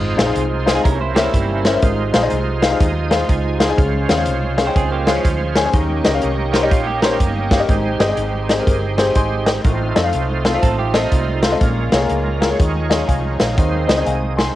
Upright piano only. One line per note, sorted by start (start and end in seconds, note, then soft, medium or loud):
0.00 0.63 G#2 medium
0.17 0.24 D#4 medium
0.17 0.24 G#4 medium
0.17 0.24 C5 medium
0.17 0.24 F5 medium
0.25 0.40 D#4 medium
0.25 0.40 G#4 medium
0.25 0.41 C5 medium
0.25 0.41 F5 medium
0.66 0.72 D#4 medium
0.66 0.73 G#4 medium
0.66 0.73 C5 medium
0.66 0.73 F5 medium
0.74 0.84 D#4 medium
0.74 0.84 G#4 medium
0.74 0.85 C5 medium
0.74 0.85 F5 medium
0.84 1.61 C3 medium
1.15 1.27 C#4 medium
1.15 1.28 A#4 medium
1.15 1.28 C5 medium
1.15 1.28 E5 medium
1.64 1.71 C#4 medium
1.64 1.71 A#4 medium
1.64 1.71 C5 medium
1.64 1.71 E5 medium
1.73 1.82 C#4 medium
1.73 1.83 A#4 medium
1.73 1.83 C5 medium
1.73 1.83 E5 medium
1.83 2.59 G#2 medium
2.13 2.19 D#4 medium
2.13 2.19 G#4 medium
2.13 2.20 C5 medium
2.13 2.20 F5 medium
2.22 2.36 D#4 medium
2.22 2.36 G#4 medium
2.22 2.36 C5 medium
2.22 2.37 D#5 medium
2.61 2.68 D#4 medium
2.61 2.68 G#4 medium
2.61 2.68 C5 medium
2.61 2.69 F5 medium
2.70 2.85 D#4 medium
2.70 2.85 G#4 medium
2.70 2.85 C5 medium
2.70 2.85 F5 medium
3.10 3.22 D#4 medium
3.10 3.23 G#4 medium
3.10 3.23 C5 medium
3.10 3.23 F5 medium
3.59 3.65 D#4 medium
3.59 3.66 G#4 medium
3.59 3.66 C5 medium
3.59 3.66 F5 medium
3.68 3.78 D#4 medium
3.68 3.78 G#4 medium
3.68 3.78 C5 medium
3.68 3.78 G#5 medium
3.77 4.54 C#3 medium
4.08 4.14 C#4 medium
4.08 4.15 G#4 medium
4.08 4.15 C5 medium
4.08 4.15 F5 medium
4.17 4.31 C#4 medium
4.17 4.31 G#4 medium
4.17 4.32 C5 medium
4.17 4.32 F5 medium
4.57 4.63 C#4 medium
4.57 4.63 G#4 medium
4.57 4.64 C5 medium
4.57 4.64 F5 medium
4.66 4.80 C#4 medium
4.66 4.80 G#4 medium
4.66 4.81 C5 medium
4.66 4.81 G5 medium
5.07 5.18 C#4 medium
5.07 5.19 G#4 medium
5.07 5.19 C5 medium
5.07 5.19 F5 medium
5.55 5.61 C#4 medium
5.55 5.61 G#4 medium
5.55 5.62 C5 medium
5.55 5.62 G#5 medium
5.64 5.73 C#4 medium
5.64 5.73 G#4 medium
5.64 5.73 C5 medium
5.64 5.74 G#5 medium
5.73 6.50 D#3 medium
6.04 6.10 C#4 medium
6.04 6.10 G4 medium
6.04 6.11 A#4 medium
6.04 6.11 D#5 medium
6.13 6.27 C#4 medium
6.13 6.27 G4 medium
6.13 6.27 A#4 medium
6.13 6.28 F5 medium
6.53 6.59 C#4 medium
6.53 6.59 G4 medium
6.53 6.60 A#4 medium
6.53 6.60 C5 medium
6.62 6.76 C#4 medium
6.62 6.76 G4 medium
6.62 6.76 A#4 medium
6.62 6.76 D#5 medium
7.02 7.14 C#4 medium
7.02 7.14 G4 medium
7.02 7.14 A#4 medium
7.02 7.14 C5 medium
7.51 7.57 C#4 medium
7.51 7.57 G4 medium
7.51 7.57 A#4 medium
7.51 7.58 F5 medium
7.59 7.68 C#4 medium
7.59 7.68 G4 medium
7.59 7.68 A#4 medium
7.59 7.69 D#5 medium
7.69 8.45 G#2 medium
8.00 8.06 C4 medium
8.00 8.06 G4 medium
8.00 8.06 G#4 medium
8.00 8.06 D#5 medium
8.08 8.22 C4 medium
8.08 8.22 G4 medium
8.08 8.22 G#4 medium
8.08 8.23 D#5 medium
8.49 8.55 C4 medium
8.49 8.55 G4 medium
8.49 8.55 G#4 medium
8.49 8.55 D#5 medium
8.58 8.72 C4 medium
8.58 8.72 G4 medium
8.58 8.72 G#4 medium
8.58 8.72 A#4 medium
8.97 9.09 C4 medium
8.97 9.09 G4 medium
8.97 9.10 G#4 medium
8.97 9.10 C5 medium
9.16 9.46 G#5 medium
9.16 9.46 C6 medium
9.46 9.94 D#5 soft
9.46 9.93 G5 medium
9.64 10.41 A2 medium
9.95 10.01 C4 medium
9.95 10.02 F4 medium
9.95 10.02 A4 medium
9.95 10.02 D#5 medium
10.03 10.18 C4 medium
10.03 10.18 F4 medium
10.03 10.18 A4 medium
10.03 10.18 F5 medium
10.45 10.51 C4 medium
10.45 10.51 F4 medium
10.45 10.51 A4 medium
10.45 10.51 C5 medium
10.54 10.68 C4 medium
10.54 10.68 F4 medium
10.54 10.68 A4 medium
10.54 10.68 F5 medium
10.93 11.05 C4 medium
10.93 11.05 F4 medium
10.93 11.06 A4 medium
10.93 11.06 D#5 medium
11.42 11.49 C4 medium
11.42 11.49 F4 medium
11.42 11.49 A4 medium
11.42 11.49 C5 medium
11.51 11.61 C4 medium
11.51 11.61 F4 medium
11.51 11.61 A4 medium
11.51 11.61 D#5 medium
11.61 12.38 A#2 medium
11.92 11.98 A#3 medium
11.92 11.98 F4 medium
11.92 11.99 G#4 medium
11.92 11.99 C#5 medium
12.01 12.15 A#3 medium
12.01 12.15 F4 medium
12.01 12.15 G#4 medium
12.01 12.16 C#5 medium
12.40 12.47 A#3 medium
12.40 12.47 F4 medium
12.40 12.48 G#4 medium
12.40 12.48 A#4 medium
12.49 12.59 A#3 medium
12.49 12.59 G#4 medium
12.49 12.59 C#5 medium
12.59 13.36 D#3 medium
12.89 13.02 C#4 medium
12.89 13.02 F4 medium
12.89 13.02 G#4 medium
12.89 13.02 D#5 medium
13.07 13.38 F5 medium
13.07 13.38 G#5 medium
13.40 13.87 C#5 soft
13.40 13.87 F5 medium
13.57 14.34 D#3 medium
13.87 13.94 C4 medium
13.87 13.94 D#4 medium
13.87 13.94 G#4 medium
13.87 13.95 D#5 medium
13.96 14.11 C4 medium
13.96 14.11 D#4 medium
13.96 14.11 G#4 medium
13.96 14.12 D#5 medium
14.06 14.37 F5 medium
14.06 14.36 G#5 medium
14.37 14.55 G#5 soft
14.37 14.55 C6 medium